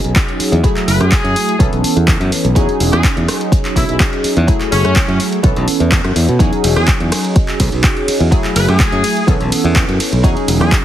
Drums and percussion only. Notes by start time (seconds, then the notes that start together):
0.04 closed hi-hat
0.16 kick, clap, closed hi-hat
0.29 closed hi-hat
0.40 open hi-hat
0.53 closed hi-hat
0.64 kick, closed hi-hat
0.77 clap, closed hi-hat
0.88 open hi-hat
1.01 cross-stick, closed hi-hat
1.12 kick, clap, closed hi-hat
1.25 closed hi-hat
1.36 open hi-hat
1.49 closed hi-hat
1.60 kick, closed hi-hat
1.73 closed hi-hat
1.84 open hi-hat
1.97 closed hi-hat
2.08 kick, clap, closed hi-hat
2.21 closed hi-hat
2.32 open hi-hat
2.45 closed hi-hat
2.56 kick, closed hi-hat
2.69 closed hi-hat
2.80 open hi-hat
2.93 cross-stick, closed hi-hat
3.04 kick, clap, closed hi-hat
3.17 closed hi-hat
3.28 cross-stick, open hi-hat
3.41 closed hi-hat
3.52 kick, closed hi-hat
3.65 clap, closed hi-hat
3.76 kick, open hi-hat
3.89 closed hi-hat
4.00 kick, clap, closed hi-hat
4.13 closed hi-hat
4.24 open hi-hat
4.37 closed hi-hat
4.48 kick, closed hi-hat
4.61 clap, closed hi-hat
4.72 open hi-hat
4.85 cross-stick, closed hi-hat
4.96 kick, clap, closed hi-hat
5.09 closed hi-hat
5.20 open hi-hat
5.32 closed hi-hat
5.44 kick, closed hi-hat
5.56 closed hi-hat
5.68 open hi-hat
5.80 closed hi-hat
5.92 kick, clap, closed hi-hat
6.04 cross-stick, closed hi-hat
6.16 open hi-hat
6.29 closed hi-hat
6.40 kick, closed hi-hat
6.53 closed hi-hat
6.64 open hi-hat, ride
6.76 cross-stick, closed hi-hat
6.88 kick, clap, closed hi-hat
7.00 closed hi-hat
7.12 cross-stick, open hi-hat, ride
7.24 closed hi-hat
7.36 kick, closed hi-hat
7.48 clap, closed hi-hat
7.60 kick, open hi-hat, ride
7.72 closed hi-hat
7.84 kick, clap, closed hi-hat
7.97 closed hi-hat
8.08 open hi-hat, ride
8.20 closed hi-hat
8.32 kick, closed hi-hat
8.44 clap, closed hi-hat
8.56 open hi-hat, ride
8.68 cross-stick, closed hi-hat
8.80 kick, clap, closed hi-hat
8.92 closed hi-hat
9.04 open hi-hat, ride
9.17 closed hi-hat
9.28 kick, closed hi-hat
9.41 closed hi-hat
9.52 open hi-hat, ride
9.65 closed hi-hat
9.76 kick, clap, closed hi-hat
9.89 closed hi-hat
10.00 open hi-hat, ride
10.13 closed hi-hat
10.24 kick, closed hi-hat
10.37 closed hi-hat
10.48 open hi-hat, ride
10.61 cross-stick, closed hi-hat
10.72 kick, clap, closed hi-hat